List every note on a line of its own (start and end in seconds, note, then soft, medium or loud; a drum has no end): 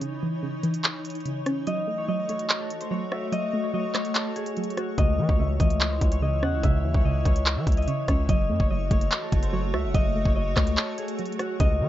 0.00 0.41 C#3 medium
0.00 1.64 E3 medium
0.00 0.84 C#4 medium
0.00 1.64 D#4 medium
0.00 0.59 F#4 medium
0.00 8.25 C#5 medium
0.00 closed hi-hat medium
0.23 0.62 E3 medium
0.43 1.24 C#3 medium
0.63 1.67 E3 medium
0.63 closed hi-hat medium
0.74 closed hi-hat medium
0.84 clap loud
0.84 closed hi-hat medium
1.05 closed hi-hat medium
1.10 closed hi-hat medium
1.15 closed hi-hat medium
1.20 closed hi-hat soft
1.26 1.67 C#3 medium
1.26 closed hi-hat medium
1.46 1.67 C#4 medium
1.46 cross-stick medium
1.46 closed hi-hat medium
1.67 2.07 F#3 medium
1.67 4.95 A3 medium
1.67 4.95 F#4 medium
1.67 2.08 D#5 loud
1.67 closed hi-hat medium
1.87 2.28 A3 medium
1.98 2.29 C#5 medium
2.08 2.90 F#3 medium
2.08 3.18 D#5 medium
2.29 3.33 A3 medium
2.29 2.87 C#5 medium
2.29 closed hi-hat medium
2.39 closed hi-hat medium
2.50 clap loud
2.50 closed hi-hat medium
2.60 4.15 A4 medium
2.70 closed hi-hat medium
2.81 2.97 C5 medium
2.81 closed hi-hat medium
2.91 3.31 F#3 medium
2.91 3.63 C#5 medium
3.12 4.15 F#4 medium
3.12 3.38 E5 medium
3.12 cross-stick medium
3.32 3.72 F#3 loud
3.32 3.73 D#5 loud
3.32 closed hi-hat medium
3.53 3.93 A3 medium
3.63 3.94 C#5 medium
3.74 4.56 F#3 medium
3.74 4.98 D#5 medium
3.95 4.98 A3 medium
3.95 5.28 C#5 medium
3.95 cross-stick medium
3.95 clap medium
3.95 closed hi-hat medium
4.05 closed hi-hat medium
4.15 4.42 A4 medium
4.15 clap loud
4.15 closed hi-hat medium
4.36 6.63 G#4 medium
4.36 closed hi-hat medium
4.46 closed hi-hat medium
4.57 4.98 F#3 medium
4.57 closed hi-hat medium
4.64 closed hi-hat medium
4.70 closed hi-hat medium
4.77 4.98 F#4 medium
4.77 7.21 F#4 medium
4.77 cross-stick medium
4.77 closed hi-hat medium
4.98 5.20 C#2 loud
4.98 5.38 C#3 medium
4.98 8.26 E3 medium
4.98 8.26 E4 medium
4.98 5.45 D#5 loud
4.98 kick loud
4.98 closed hi-hat medium
5.18 5.59 E3 medium
5.18 5.28 E3 loud
5.29 5.59 C#2 loud
5.29 5.97 C#5 medium
5.29 kick medium
5.39 6.21 C#3 medium
5.39 5.66 E5 medium
5.60 6.00 C#2 loud
5.60 6.64 E3 medium
5.60 6.22 D#5 medium
5.60 kick medium
5.60 closed hi-hat medium
5.70 closed hi-hat medium
5.81 clap loud
5.81 closed hi-hat medium
5.91 6.18 C5 medium
6.01 6.44 C#2 loud
6.01 kick loud
6.01 closed hi-hat medium
6.12 6.94 C#5 medium
6.12 closed hi-hat medium
6.22 6.62 C#3 medium
6.22 6.70 D#5 medium
6.43 6.55 E2 loud
6.43 7.46 C#4 medium
6.43 8.04 F#5 medium
6.43 cross-stick medium
6.53 6.63 C#2 loud
6.63 6.86 C#2 loud
6.63 7.03 C#3 medium
6.63 7.11 E5 loud
6.63 kick loud
6.63 closed hi-hat medium
6.84 6.94 D#2 loud
6.84 7.24 E3 medium
6.94 7.24 C#2 loud
6.94 7.25 C#5 medium
6.94 kick medium
7.05 7.86 C#3 medium
7.05 7.63 D#5 medium
7.25 7.58 C#2 loud
7.25 8.29 E3 medium
7.25 7.87 C#5 medium
7.25 kick loud
7.25 closed hi-hat medium
7.36 closed hi-hat medium
7.46 clap loud
7.46 closed hi-hat medium
7.56 7.66 E3 loud
7.56 7.83 E5 medium
7.67 7.87 C#2 loud
7.67 kick loud
7.67 closed hi-hat medium
7.72 closed hi-hat medium
7.77 8.29 D#5 medium
7.77 closed hi-hat medium
7.82 closed hi-hat soft
7.88 8.29 C#3 medium
7.88 8.08 C#5 medium
7.88 closed hi-hat medium
8.08 8.28 C#2 loud
8.08 8.29 C#4 medium
8.08 8.60 C#5 medium
8.08 kick medium
8.08 cross-stick medium
8.08 closed hi-hat medium
8.29 8.51 F#1 loud
8.29 8.69 F#3 medium
8.29 11.57 A3 medium
8.29 11.57 F#4 medium
8.29 11.57 C#5 medium
8.29 8.70 D#5 loud
8.29 kick loud
8.29 closed hi-hat medium
8.49 8.59 F#2 loud
8.49 8.90 A3 medium
8.60 8.90 F#1 loud
8.60 8.91 C#5 medium
8.60 kick medium
8.70 9.52 F#3 medium
8.70 9.80 D#5 medium
8.91 9.11 F#1 loud
8.91 9.95 A3 medium
8.91 9.49 C#5 medium
8.91 kick medium
8.91 closed hi-hat medium
9.01 closed hi-hat medium
9.12 clap loud
9.12 closed hi-hat medium
9.22 10.77 A4 medium
9.32 9.75 F#1 loud
9.32 kick loud
9.32 closed hi-hat medium
9.43 9.59 C5 medium
9.43 closed hi-hat medium
9.53 9.93 F#3 medium
9.53 10.25 C#5 medium
9.74 9.86 C#2 loud
9.74 10.77 F#4 medium
9.74 10.00 E5 medium
9.74 cross-stick medium
9.84 9.94 F#1 loud
9.94 10.24 F#1 loud
9.94 10.34 F#3 loud
9.94 10.35 D#5 loud
9.94 kick loud
9.94 closed hi-hat medium
10.16 10.56 A3 medium
10.25 10.55 F#1 loud
10.25 10.56 C#5 medium
10.25 kick medium
10.36 11.18 F#3 medium
10.36 11.60 D#5 medium
10.56 10.76 C#2 loud
10.56 11.60 A3 medium
10.56 11.89 C#5 medium
10.56 kick medium
10.56 cross-stick loud
10.56 clap medium
10.56 closed hi-hat medium
10.67 closed hi-hat medium
10.77 11.04 A4 medium
10.77 clap loud
10.77 closed hi-hat medium
10.98 11.89 G#4 medium
10.98 closed hi-hat medium
11.08 closed hi-hat medium
11.19 11.60 F#3 medium
11.19 closed hi-hat medium
11.26 closed hi-hat medium
11.32 closed hi-hat medium
11.39 11.89 F#4 medium
11.39 11.60 F#4 medium
11.39 cross-stick medium
11.39 closed hi-hat medium
11.60 11.82 C#2 loud
11.60 11.89 C#3 loud
11.60 11.89 E3 medium
11.60 11.89 E4 medium
11.60 11.89 C#5 medium
11.60 11.89 D#5 loud
11.60 kick loud
11.60 closed hi-hat medium
11.81 11.89 E3 medium
11.81 11.89 E3 loud